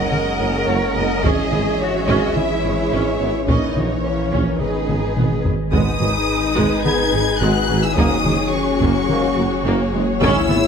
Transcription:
Already playing: F#1 C#3 F#3 G#3 C#4 G#4 C#5 D#5 F#5
0.12 A#4, taiko mid
0.40 F#1 C#4
0.67 F#1 C#4 C#5
0.96 F#1 B3 D#5
1.23 G#1 E3 G#3 C#4 G#4 E5, taiko
1.52 G#1 B3, taiko mid
1.80 F#4 C#5
2.08 G#1 C#4 D#5, taiko
2.36 E4 E5, taiko mid
2.64 G#1 C#4 C#5
2.92 G#1 C#4
3.20 G#1 B3 E4
3.48 A#1 E3 A#3 C#4 D#4 C#5 D#5, taiko
3.76 A#1 B3 C#5, taiko mid
4.05 C#4
4.33 A#1 C#4, taiko
4.60 G#1 D#3 G#3 B3 D#4 G#4 B4 D#5, taiko mid
4.89 G#1 B3, taiko mid
5.17 G#1 B3, taiko low-mid
5.45 G#1 A#3, taiko low
5.72 G#1 G#2 D#3 G#3 B3 D#4 G#4 B4 D#6, taiko
6.00 G#1 G#2 F#3, taiko mid
6.57 G#1 G#2 G#3, taiko
6.85 G#2 B3 G#4 G#6, taiko mid
7.13 G#1 G#2 G#3
7.41 G#1 G#2 G#3 F#4 F#6
7.69 G#1 G#2 F#3
7.84 E4 E6
7.97 F#1 F#2 G#2 F#3 A#3 D#4 F#4 C#5 D#6, taiko
8.25 F#1 F#2 G#3, taiko mid
8.53 C#4 C#6
8.81 F#1 F#2 A#3, taiko
9.09 G#2 A#3, taiko mid
9.37 F#1 F#2 A#3
9.65 F#1 F#2 A#3
9.93 F#1 F#2 G#3
10.21 G#1 G#2 C#4 E4 G#4 E6, taiko
10.49 G#1 G#2 B3, taiko mid

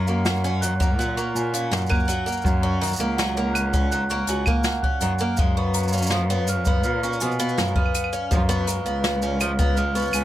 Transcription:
Already playing: F#2 A#5 C#6
0.07 A#3 F5, shaker
0.24 F#5, snare, shaker
0.44 C#4 C#5, shaker
0.61 D#3 F#6, closed hi-hat, shaker
0.80 A#3 F#5, kick, shaker
0.99 A#2 F#3 F#6, shaker
1.17 A#3 C#6, shaker
1.35 A#2 G#5, shaker
1.54 C#4 F5, closed hi-hat, shaker
1.71 F#2 D#3 F#5, snare, shaker
1.77 shaker
1.81 shaker
1.86 A#3 F#6, claves, shaker
1.91 kick, shaker
2.00 shaker
2.05 F#3, closed hi-hat, shaker
2.09 F#5, shaker
2.26 A#3 F#5, shaker
2.32 shaker
2.37 shaker
2.42 F#2 F#5, kick, shaker
2.46 shaker
2.63 C#4 C#6
2.81 D#3 A#5, closed hi-hat, shaker
2.84 shaker
2.87 shaker
2.89 shaker
2.91 shaker
2.93 shaker
2.96 shaker
2.98 C#2 A#3 F5, shaker
3.17 F#3 F#5, snare, shaker
3.35 A#3 C#5, shaker
3.53 F#6, closed hi-hat, claves, shaker
3.72 C#4 F#5, kick, shaker
3.91 D#3 F#6, shaker
4.10 A#3 C#6, shaker
4.27 C#2 F#3 G#5, closed hi-hat, shaker
4.46 A#3 F5, kick, claves, shaker
4.64 F#5, snare, shaker
4.83 C#4 F#6, kick
5.01 F#2 D#3 F#5, closed hi-hat, shaker
5.19 A#3 F#5, shaker
5.37 F#2 G#3 F5, kick, shaker
5.57 B3 C#6
5.74 A#5, closed hi-hat, shaker
5.78 shaker
5.83 shaker
5.88 shaker
5.92 C#4 F5, shaker
5.97 shaker
6.02 shaker
6.07 snare, shaker
6.11 F3 F5
6.30 B3 C#5, shaker
6.47 G#3 F6, closed hi-hat, shaker
6.65 B3 F5, kick, shaker
6.84 A#2 F6, shaker
7.03 C#4 C#6, shaker
7.13 shaker
7.21 B2 F3 G#5, closed hi-hat, shaker
7.31 shaker
7.40 B3 F5, shaker
7.49 shaker
7.57 F#2 G#3 F5, snare, shaker
7.67 shaker
7.75 B3 F6, kick, claves
7.86 claves
7.94 F5, closed hi-hat, claves, shaker
8.04 claves
8.13 C#4 F5, shaker
8.31 F#2 F3 F5, kick, shaker
8.49 B3 C#6, shaker
8.67 G#3 A#5, closed hi-hat, shaker
8.86 C#2 B3 F5, shaker
9.04 F5, snare, shaker
9.22 C#4 C#5, shaker
9.40 F3 F6, closed hi-hat, claves, shaker
9.59 B3 F5, kick, shaker
9.77 G#3 F6, shaker
9.95 B3 C#6, shaker
9.99 shaker
10.02 shaker
10.05 shaker
10.07 shaker
10.11 claves, shaker
10.13 C#2 G#5, closed hi-hat, shaker

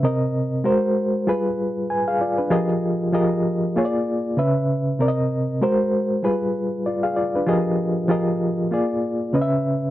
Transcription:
0.03 C3 C4 A#4 D#5
0.64 G#3 F#4 A#4 C5
1.27 G3 F4 G#4 B4
1.90 B4 G#5
2.08 G#4 F5
2.21 F4 D5
2.38 D4 B4
2.50 F3 F4 G4 G#4 A#4 D#5
3.12 F3 F4 G4 G#4 A#4 D#5
3.76 A#3 F4 G#4 C#5
3.85 D5
4.37 C#3 C#4 B4 E5
4.99 C3 C4 A#4 D5
5.08 D#5
5.61 G#3 F#4 A#4 C5
6.23 G3 F4 G#4 B4
6.86 F4 D5
7.03 G#4 F5
7.16 F4 D5
7.35 D4 B4
7.47 F3 F4 G4 G#4 A#4 D#5
8.08 F3 F4 G4 G#4 A#4 D#5
8.71 A#3 F4 G#4 D5
9.33 C#3 C#4 B4 D#5
9.42 E5

